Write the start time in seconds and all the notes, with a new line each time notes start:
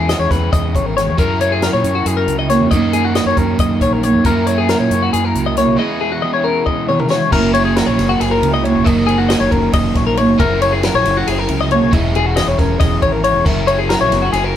Already playing: E2 E3 G#3 C#4 E4 G#4
0.08 E3 D#5, snare, closed hi-hat
0.19 E2 C#5
0.31 E2 C#4 B4, kick, snare, closed hi-hat
0.53 E2 D#5, kick, closed hi-hat
0.75 G#1 C#5, kick, closed hi-hat
0.86 A#4
0.97 E2 C#5, snare, closed hi-hat
1.07 E2
1.18 F#2 F#3 C#4 E4 A#4, kick, closed hi-hat
1.41 C#5, closed hi-hat
1.52 G#4
1.62 F#3 A#4, snare, closed hi-hat
1.73 A#2 C#5
1.83 F#2 C#4, closed hi-hat
1.95 F#4
2.06 F#2 G#4, closed hi-hat
2.17 A#4
2.26 C#2 C#3, closed hi-hat
2.39 D#5
2.49 A#3 C#5, snare, closed hi-hat
2.60 F#2
2.71 F#2 D#3 F#3 A#3 C#4 D#4 F#4 A#4 D#5, kick, closed hi-hat
2.93 G#4, closed hi-hat
3.05 F#4
3.15 D#3 D#5, snare, closed hi-hat
3.26 F#2 C#5
3.37 F#2 C#4 A#4, kick, closed hi-hat
3.59 F#2 D#5, kick, closed hi-hat
3.81 A#1 F#2 C#5, kick, closed hi-hat
3.93 A#4
4.03 A#3 C#5, closed hi-hat
4.14 F#2
4.24 F#2 F#3 A#3 C#4 E4 A#4, kick, closed hi-hat
4.47 C#5, closed hi-hat
4.58 G#4
4.68 F#3 A#4, snare, closed hi-hat
4.80 A#2 C#5
4.90 F#2 C#4, closed hi-hat
5.03 F#4
5.13 F#2 G#4, closed hi-hat
5.25 A#4
5.35 C#2 C#3, closed hi-hat
5.46 D#5
5.57 A#3 C#5, snare, closed hi-hat
5.67 B1
5.77 E2 E3 G#3 B3 E4 G#4 D#5
6.01 G#4
6.12 F#4
6.22 E3 D#5
6.34 C#5
6.44 C#4 A#4
6.66 D#5, kick
6.89 B2 C#5, mid tom
6.99 A#4, mid tom
7.10 G#3 C#5, snare
7.32 F#1 F#2 F#3 A#3 C#4 E4 A#4, kick, crash
7.36 E4
7.54 C#5, ride
7.65 G#4
7.76 F#3 A#4, snare, ride
7.86 A#1 C#5
7.98 F#1 C#4, snare, ride
8.09 F#4
8.20 F#1 G#4, snare, ride
8.31 A#4
8.42 C#2 C#3, ride
8.54 D#5
8.64 A#3 C#5, ride
8.75 F#1
8.84 F#1 F#2 F#3 A#3 D#4 A#4 D#5, kick, ride
9.07 G#4, ride
9.18 F#4
9.29 D#3 D#5, snare, ride
9.40 F#1 C#5
9.51 F#1 C#4 A#4, kick, ride
9.73 F#1 D#5, kick, snare, ride
9.95 A#1 F#2 C#5, kick, snare, ride
10.07 A#4
10.17 A#3 C#5, ride
10.28 F#1
10.38 F#1 F#2 F#3 C#4 E4 A#4, kick, ride
10.62 C#5, ride
10.72 G#4
10.83 F#3 A#4, snare, ride
10.94 A#1 C#5
11.05 F#1 C#4, snare, ride
11.17 F#4
11.27 F#1 G#4, snare, ride
11.38 A#4
11.48 C#2 C#3, ride
11.61 D#5
11.71 A#3 C#5, ride
11.82 B1
11.92 E1 E2 E3 G#3 C#4 E4 G#4 D#5, kick, ride
12.15 G#4, ride
12.26 F#4
12.36 E3 D#5, snare, ride
12.46 E1 C#5
12.59 E1 C#4 A#4, kick, snare, ride
12.80 E1 D#5, kick, snare, ride
13.02 G#1 C#5, kick, ride
13.12 A#4
13.24 E2 C#5, ride
13.34 E1
13.45 F#1 F#2 F#3 C#4 E4 A#4, kick, crash
13.67 C#5, ride
13.79 G#4
13.89 F#3 A#4, snare, ride
14.01 A#1 C#5
14.11 F#1 B3, snare, ride
14.22 C#4 F#4
14.32 F#1 G#4, snare, ride
14.44 A#4